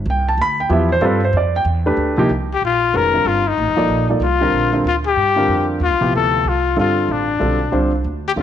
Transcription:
0.06 0.37 C2 medium
0.10 0.28 G5 medium
0.29 0.39 A5 medium
0.38 0.69 D2 medium
0.38 0.59 B5 loud
0.60 0.71 G5 medium
0.69 1.00 E2 medium
0.69 0.88 F3 medium
0.69 0.88 B3 medium
0.69 0.88 E4 medium
0.69 0.88 G4 medium
0.69 0.91 E5 medium
0.92 1.03 C5 loud
1.01 1.32 G2 medium
1.01 1.20 G3 medium
1.01 1.20 C4 medium
1.01 1.20 F4 medium
1.01 1.20 A4 medium
1.05 1.23 B4 medium
1.25 1.35 C5 medium
1.33 1.64 F2 medium
1.37 1.55 D5 medium
1.56 1.63 G5 medium
1.65 1.96 E2 medium
1.86 2.16 A3 medium
1.86 2.16 D4 medium
1.86 2.16 G4 medium
1.86 2.16 B4 medium
1.97 2.28 D2 medium
2.17 2.28 C3 medium
2.17 2.28 F3 medium
2.17 2.29 A#3 medium
2.17 2.29 D#4 medium
2.17 2.29 G4 medium
2.29 2.60 C2 medium
2.54 2.63 G4 medium
2.62 2.92 A#1 medium
2.62 2.98 F4 medium
2.93 3.24 F1 medium
2.93 3.11 D#3 soft
2.93 3.11 G#3 medium
2.93 3.11 C#4 soft
2.93 3.12 F#4 soft
2.93 3.29 A#4 medium
2.93 3.12 B4 medium
3.14 3.41 D3 soft
3.14 3.42 G3 soft
3.14 3.42 C4 soft
3.14 3.42 F4 soft
3.14 3.42 A#4 medium
3.25 3.56 G1 medium
3.25 3.50 F4 medium
3.48 4.10 D#4 medium
3.57 3.67 A1 medium
3.67 3.77 G1 soft
3.76 3.87 D#1 medium
3.76 4.07 F3 medium
3.76 4.07 A#3 medium
3.76 4.07 D#4 medium
3.76 4.07 A4 medium
3.76 4.07 D5 medium
3.88 4.19 A#1 medium
4.10 4.20 F3 medium
4.10 4.20 A#3 medium
4.10 4.20 D#4 medium
4.10 4.20 A4 medium
4.10 4.20 D5 medium
4.20 4.51 C2 medium
4.20 4.82 F4 medium
4.41 4.71 D3 medium
4.41 4.71 G3 medium
4.41 4.71 C4 medium
4.41 4.71 F4 medium
4.41 4.71 A#4 medium
4.52 4.83 A#1 medium
4.73 4.84 D3 medium
4.73 4.84 G3 soft
4.73 4.84 C4 medium
4.73 4.84 F4 medium
4.73 4.84 A#4 medium
4.84 5.15 D2 medium
4.84 4.96 F4 medium
5.07 5.66 G4 medium
5.16 5.47 G2 medium
5.36 5.78 D3 medium
5.36 5.78 G3 medium
5.36 5.78 C4 medium
5.36 5.78 F4 medium
5.36 5.79 A#4 medium
5.48 5.79 F2 medium
5.80 5.91 D#2 medium
5.80 6.12 F4 medium
5.91 6.01 C2 medium
6.01 6.12 A#1 medium
6.01 6.42 C3 medium
6.01 6.42 F3 medium
6.01 6.42 B3 medium
6.01 6.42 E4 medium
6.01 6.43 G4 medium
6.12 6.43 D2 medium
6.12 6.50 A4 medium
6.44 6.75 C2 medium
6.49 6.78 F4 medium
6.76 7.07 G1 medium
6.76 7.24 D3 medium
6.76 7.24 G3 medium
6.76 7.24 C4 medium
6.76 7.25 F4 medium
6.76 7.14 F4 medium
6.76 7.25 A4 medium
7.08 7.39 A1 medium
7.08 7.94 D4 medium
7.40 7.72 B1 medium
7.40 7.58 D3 medium
7.40 7.58 G3 medium
7.40 7.58 C4 medium
7.40 7.58 F4 medium
7.40 7.58 A4 medium
7.72 8.03 C2 medium
7.72 7.90 D3 medium
7.72 7.90 G3 medium
7.72 7.90 C4 medium
7.72 7.90 F4 medium
7.72 7.91 C5 medium
8.04 8.35 D2 medium
8.28 8.32 G4 medium
8.36 8.42 E2 medium
8.36 8.42 D3 medium
8.36 8.42 G3 medium
8.36 8.42 C4 medium
8.36 8.42 F4 medium
8.36 8.42 A4 medium

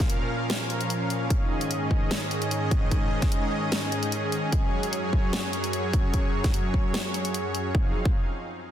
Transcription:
0.00 1.27 A#2 medium
0.00 1.26 F3 medium
0.00 7.71 C#4 medium
0.00 1.27 A#4 medium
0.00 1.27 F5 medium
0.00 kick loud
0.00 snare soft
0.00 closed hi-hat soft
0.10 closed hi-hat medium
0.50 snare loud
0.50 closed hi-hat medium
0.70 closed hi-hat soft
0.81 closed hi-hat medium
0.90 closed hi-hat medium
1.10 closed hi-hat soft
1.30 4.49 G#2 medium
1.30 4.49 D#3 medium
1.30 7.71 G#4 medium
1.30 4.49 D#5 medium
1.30 kick loud
1.30 closed hi-hat medium
1.61 closed hi-hat soft
1.71 closed hi-hat medium
1.91 kick medium
2.11 snare loud
2.11 closed hi-hat medium
2.31 closed hi-hat soft
2.42 closed hi-hat medium
2.51 closed hi-hat medium
2.71 kick loud
2.71 closed hi-hat soft
2.91 kick loud
2.91 closed hi-hat medium
3.22 kick loud
3.22 snare soft
3.22 closed hi-hat soft
3.32 closed hi-hat medium
3.72 snare loud
3.72 closed hi-hat medium
3.92 closed hi-hat soft
4.03 closed hi-hat medium
4.12 closed hi-hat medium
4.32 closed hi-hat medium
4.52 7.71 F#2 medium
4.52 7.71 F#3 medium
4.52 7.71 C#5 medium
4.52 kick loud
4.52 closed hi-hat medium
4.83 closed hi-hat medium
4.93 closed hi-hat medium
5.13 kick medium
5.33 snare loud
5.33 closed hi-hat medium
5.53 closed hi-hat medium
5.64 closed hi-hat medium
5.73 closed hi-hat medium
5.93 kick loud
5.93 closed hi-hat medium
6.14 kick loud
6.14 closed hi-hat medium
6.44 kick loud
6.44 snare soft
6.44 closed hi-hat medium
6.54 closed hi-hat medium
6.74 kick medium
6.94 snare loud
6.94 closed hi-hat medium
7.14 closed hi-hat medium
7.25 closed hi-hat medium
7.34 closed hi-hat medium
7.55 closed hi-hat medium
7.75 7.93 F3 medium
7.75 7.93 C4 medium
7.75 7.93 D#4 medium
7.75 7.93 G#4 medium
7.75 7.93 F5 medium
7.75 kick loud
8.05 kick loud

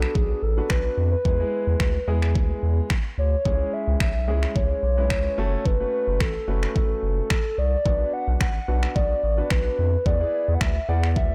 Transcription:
0.00 0.39 B3 medium
0.00 0.39 D4 medium
0.00 0.39 F#4 medium
0.00 0.16 A4 medium
0.00 0.39 B4 medium
0.00 finger snap medium
0.15 0.33 B1 loud
0.15 0.44 G#4 medium
0.15 kick loud
0.43 0.61 A1 medium
0.43 0.72 A4 medium
0.57 1.08 B3 medium
0.57 1.08 D4 medium
0.57 1.08 F#4 medium
0.57 1.08 B4 medium
0.70 0.88 B1 medium
0.70 1.11 B4 medium
0.70 finger snap loud
0.70 kick loud
0.98 1.16 F2 medium
1.12 2.18 B4 medium
1.25 1.43 E2 loud
1.25 1.36 G#3 medium
1.25 1.36 B3 medium
1.25 1.36 E4 medium
1.25 1.36 G#4 medium
1.25 kick loud
1.40 1.90 G#3 medium
1.40 1.90 B3 medium
1.40 1.90 E4 medium
1.40 1.90 G#4 medium
1.67 1.76 E2 medium
1.80 1.98 D2 medium
1.80 finger snap loud
1.80 kick loud
2.07 2.37 E2 medium
2.07 2.89 G#3 medium
2.07 2.89 B3 medium
2.07 2.89 E4 medium
2.07 2.89 G#4 medium
2.22 finger snap medium
2.35 2.54 D2 medium
2.35 kick loud
2.63 2.81 E2 medium
2.90 finger snap loud
2.90 kick loud
3.18 3.36 D2 medium
3.18 3.75 C#5 medium
3.45 3.64 C#2 loud
3.45 4.07 G#3 medium
3.45 4.07 C#4 medium
3.45 4.07 E4 medium
3.45 4.07 G#4 medium
3.45 kick loud
3.73 4.00 E5 medium
3.88 3.96 C#2 loud
4.00 4.30 B1 medium
4.00 4.52 E5 medium
4.00 finger snap loud
4.00 kick loud
4.28 4.46 C#2 medium
4.28 4.79 G#3 medium
4.28 4.79 C#4 medium
4.28 4.79 E4 medium
4.28 4.79 G#4 medium
4.43 finger snap medium
4.56 4.74 C#2 loud
4.56 5.67 C#5 loud
4.56 kick loud
4.83 5.12 B1 loud
4.97 5.38 G#3 medium
4.97 5.36 C#4 medium
4.97 5.38 E4 medium
4.97 5.38 B4 medium
5.10 5.29 C#2 medium
5.10 finger snap loud
5.10 kick loud
5.38 5.56 F#1 medium
5.38 5.71 A3 medium
5.38 5.71 C#4 medium
5.38 5.71 F#4 medium
5.38 5.72 A4 loud
5.66 5.84 F#1 loud
5.66 6.23 B4 loud
5.66 kick loud
5.80 6.31 A3 medium
5.80 6.31 C#4 medium
5.80 6.31 F#4 medium
5.80 6.31 B4 medium
6.08 6.22 F#1 medium
6.20 6.39 A1 medium
6.20 6.75 A4 medium
6.20 finger snap loud
6.20 kick loud
6.48 6.66 F#1 loud
6.48 7.29 A3 medium
6.48 7.29 C#4 medium
6.48 7.29 F#4 medium
6.48 7.29 B4 medium
6.63 finger snap medium
6.76 6.94 A1 medium
6.76 7.60 A4 loud
6.76 kick loud
7.03 7.21 F#1 medium
7.30 finger snap loud
7.30 kick loud
7.58 7.76 C2 medium
7.58 8.15 D5 loud
7.85 8.04 B1 loud
7.85 8.47 B3 medium
7.85 8.47 D4 medium
7.85 8.47 F#4 medium
7.85 8.47 B4 medium
7.85 kick loud
8.13 8.40 F#5 loud
8.28 8.36 B1 loud
8.41 8.59 A1 medium
8.41 8.97 F#5 loud
8.41 finger snap loud
8.41 kick loud
8.68 8.86 B1 loud
8.68 9.19 B3 medium
8.68 9.19 D4 medium
8.68 9.19 F#4 medium
8.68 9.19 B4 medium
8.83 finger snap medium
8.96 9.14 B1 medium
8.96 9.52 D5 loud
8.96 kick loud
9.24 9.42 A1 medium
9.37 9.88 B3 medium
9.37 9.88 D4 medium
9.37 9.88 F#4 medium
9.37 9.88 B4 medium
9.50 9.69 B1 medium
9.50 10.08 B4 medium
9.50 finger snap loud
9.50 kick loud
9.79 9.97 F2 medium
10.06 10.24 E2 loud
10.06 10.17 B3 medium
10.06 10.17 E4 medium
10.06 10.17 G#4 medium
10.06 10.17 B4 medium
10.06 10.56 D5 loud
10.06 kick loud
10.20 10.71 B3 medium
10.20 10.71 E4 medium
10.20 10.71 G#4 medium
10.20 10.71 B4 medium
10.48 10.57 E2 medium
10.54 10.62 F#5 medium
10.61 10.79 D2 medium
10.61 10.90 E5 loud
10.61 finger snap loud
10.61 kick loud
10.88 11.18 E2 medium
10.88 11.35 B3 medium
10.88 11.35 E4 medium
10.88 11.35 G#4 medium
10.88 11.35 D5 medium
10.88 11.16 F#5 loud
11.03 finger snap medium
11.16 11.34 D2 loud
11.16 11.35 E5 medium
11.16 kick loud

